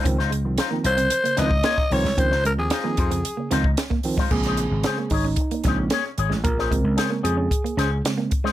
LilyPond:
<<
  \new Staff \with { instrumentName = "Alto saxophone" } { \time 4/4 \key bes \minor \tempo 4 = 113 r4. c''4 ees''4 des''8 | c''8 bes'16 aes'2 r4 r16 | r1 | r1 | }
  \new Staff \with { instrumentName = "Clean electric guitar" } { \time 4/4 \key bes \minor r16 <ees' f' c''>16 r8 <ees' f' c''>16 r16 <ees' f' des''>16 r8. <ees' f' c''>8 <ees' f' des''>16 r16 <ees' f' des''>16 r16 | r16 <ees' f' c''>16 r8 <ees' f' c''>16 r16 <ees' f' c''>16 r8. <ees' f' c''>16 r4 <ees' f' c''>16 | r16 <des' aes' c''>16 r8 <des' aes' c''>16 r16 <des' aes' des''>16 r8. <des' aes' c''>16 r16 <des' aes' des''>16 r16 <des' aes' des''>16 r16 | r16 <des' aes' c''>16 r8 <des' aes' c''>16 r16 <des' aes' c''>16 r8. <des' aes' c''>16 r4 <des' aes' c''>16 | }
  \new Staff \with { instrumentName = "Clean electric guitar" } { \time 4/4 \key bes \minor des'16 r16 aes16 r8 bes16 r16 c'16 r16 bes16 c'16 r16 bes16 r8 aes16 | des'16 r16 aes16 r8 bes16 r16 c'16 r16 bes16 c'16 r8 bes16 r16 aes16 | bes16 r16 aes16 r8 bes16 r16 des'16 r16 bes16 des'16 r16 bes16 r8 aes16 | bes16 r16 aes16 r8 bes16 r16 des'16 r16 bes16 des'16 r8 bes16 r16 aes16 | }
  \new Staff \with { instrumentName = "Tine electric piano" } { \clef bass \time 4/4 \key bes \minor << { <ees f c'>16 r8 <ees f c'>16 r16 <ees f c'>16 r8 <f c'>16 r16 <ees f c'>16 r8. <ees f c'>16 r16 | <ees f c'>16 r8 <ees f c'>16 r16 <ees f c'>16 r8 <f c'>16 r16 <ees f c'>16 r8. <ees f c'>16 r16 | aes'4. ees'4. r4 | bes'4. aes'4. r4 | } \\ { r8 des16 r4 des16 r16 des16 r4. | r8 des16 r4 des16 r16 des16 r4. | <des aes c'>4. r4 <des aes c'>8 r4 | r8 <des aes c'>4. r4 <des aes c'>8 r8 | } >> }
  \new Staff \with { instrumentName = "Slap bass" } { \clef bass \time 4/4 \key bes \minor des,8. c,16 r8 c,8 r8 des,8 r8 c,16 c,16 | des,8. ees,16 r8 f,8 r8 des,8 r4 | bes,,8. aes,,16 r8 aes,,8 r8 bes,,8 r8 aes,,16 a,,16 | bes,,8. des,16 r8 f,8 r8 des,8 r4 | }
  \new DrumStaff \with { instrumentName = "Drums" } \drummode { \time 4/4 <hh bd>16 sn16 hh8 <hh sn>8 hh16 hh16 hh16 hh16 <hh sn>16 bd16 <hh sn>16 bd16 hho16 sn16 | <hh bd>16 sn16 hh8 <hh sn>8 <hh bd>16 hh16 hh8 <hh sn>16 bd16 <hh sn>16 bd16 hho16 <bd sn>16 | <cymc bd>16 <hh sn>16 hh8 <hh sn>8 <hho bd>8 <hh bd>16 hh16 <hh bd sn>8 <hh sn>8 hh16 sn16 | <hh bd>16 sn16 <hh bd>8 <hh sn>8 hh8 <hh bd>16 hh16 <hh sn>8 <hh sn>8 <hh bd>16 sn16 | }
>>